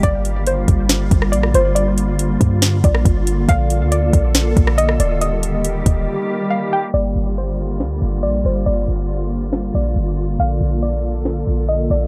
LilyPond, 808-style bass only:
\new Staff \with { instrumentName = "808-style bass" } { \clef bass \time 4/4 \key g \minor \tempo 4 = 139 g,,4. g,,4 g,,8 bes,,8 g,,8~ | g,,4. g,4 bes,,8 g,,4 | bes,,8. d,8. bes,,4 bes,,4 ees,,8~ | ees,,4. ees,,8 r2 |
g,,8 g,,4. d,8 g,,8 bes,,8 g,,8 | g,,8 g,,2 bes,,8 g,,4 | bes,,8 bes,,2 bes,,4 bes,,8 | }